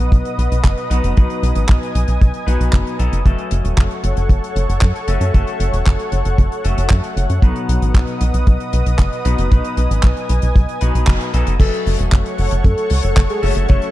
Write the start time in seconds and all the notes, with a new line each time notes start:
Already playing: B2 F#3 B3 D#4 B4 D#5 F#5 D#6
0.12 B1, kick, closed hi-hat
0.25 closed hi-hat
0.38 B1, closed hi-hat
0.51 B1, closed hi-hat
0.64 F#1, kick, clap, closed hi-hat
0.78 closed hi-hat
0.90 B1 B2 F#3 B3 D#4 B4, closed hi-hat
1.03 F#1, closed hi-hat
1.16 B1 B2 F#3 B3 D#4 B4 G#5, kick, closed hi-hat
1.30 closed hi-hat
1.43 B1, closed hi-hat
1.55 A1, closed hi-hat
1.69 B1, kick, clap, closed hi-hat
1.83 closed hi-hat
1.95 B1, closed hi-hat
2.08 B1, closed hi-hat
2.21 B1, kick, closed hi-hat
2.34 closed hi-hat
2.47 B1 B2 F#3 B3 D#4 B4, closed hi-hat
2.60 B1, closed hi-hat
2.73 F#1, kick, clap, closed hi-hat
2.87 closed hi-hat
2.99 B1 F#3 B3 D#4 A4, closed hi-hat
3.12 F#1, closed hi-hat
3.25 F#1 F#3 A3 C#4 A4 C#5 F#5 C#6, kick, closed hi-hat
3.38 closed hi-hat
3.51 F#1, closed hi-hat
3.65 E1, closed hi-hat
3.78 F#1, kick, clap, closed hi-hat
3.91 closed hi-hat
4.04 F#1, closed hi-hat
4.17 F#1, closed hi-hat
4.29 F#1, kick, closed hi-hat
4.44 closed hi-hat
4.56 F#1, closed hi-hat
4.69 F#1, closed hi-hat
4.81 F#2, kick, clap, closed hi-hat
4.96 closed hi-hat
5.08 F#1 F#3 A3 C#4 A4, closed hi-hat
5.21 F#2, closed hi-hat
5.34 F#1 F#3 A3 C#4 A4, kick, closed hi-hat
5.47 closed hi-hat
5.60 F#1, closed hi-hat
5.73 E1, closed hi-hat
5.87 F#1, kick, clap, closed hi-hat
5.99 closed hi-hat
6.12 F#1, closed hi-hat
6.25 F#1, closed hi-hat
6.38 F#1, kick, closed hi-hat
6.52 closed hi-hat
6.64 F#1 F#3 A3 C#4 A4, closed hi-hat
6.78 F#1, closed hi-hat
6.90 F#2, kick, clap, closed hi-hat
7.04 closed hi-hat
7.17 F#1, closed hi-hat
7.30 F#2, closed hi-hat
7.42 B1 B2 F#3 B3 D#4 B4 D#5 D#6, kick, closed hi-hat
7.56 closed hi-hat
7.69 B1, closed hi-hat
7.82 A1, closed hi-hat
7.94 B1, kick, clap, closed hi-hat
8.07 closed hi-hat
8.21 B1, closed hi-hat
8.34 B1, closed hi-hat
8.47 B1, kick, closed hi-hat
8.60 closed hi-hat
8.73 B1, closed hi-hat
8.86 B1, closed hi-hat
8.99 F#1, kick, clap, closed hi-hat
9.13 closed hi-hat
9.25 B1 B2 F#3 B3 D#4 B4, closed hi-hat
9.38 F#1, closed hi-hat
9.51 B1 B2 F#3 B3 D#4 B4 G#5, kick, closed hi-hat
9.65 closed hi-hat
9.77 B1, closed hi-hat
9.90 A1, closed hi-hat
10.03 B1, kick, clap, closed hi-hat
10.17 closed hi-hat
10.29 B1, closed hi-hat
10.42 B1, closed hi-hat
10.56 B1, kick, closed hi-hat
10.69 closed hi-hat
10.81 B1 B2 F#3 B3 D#4 B4, closed hi-hat
10.95 B1, closed hi-hat
11.07 F#1, kick, clap, closed hi-hat
11.21 closed hi-hat
11.34 B1 F#3 B3 D#4 A4, closed hi-hat
11.47 F#1, closed hi-hat
11.60 F#1 F#3 A3 C#4 A4 C#5 F#5 C#6, kick, closed hi-hat, crash
11.74 closed hi-hat
11.86 F#1, open hi-hat
11.98 E1, closed hi-hat
12.11 F#1, kick, clap, closed hi-hat
12.26 closed hi-hat
12.38 F#1, open hi-hat
12.51 F#1, closed hi-hat
12.64 F#2 A4, kick, closed hi-hat
12.78 closed hi-hat
12.90 C#2, open hi-hat
13.03 F#1 A4, closed hi-hat
13.16 F#1, kick, clap, closed hi-hat
13.30 G#4, closed hi-hat
13.42 F#1 F#3 A3 C#4 A4, open hi-hat
13.55 F#1, closed hi-hat
13.69 F#1 F#3 A3 C#4 A4 C#5, kick, closed hi-hat
13.82 closed hi-hat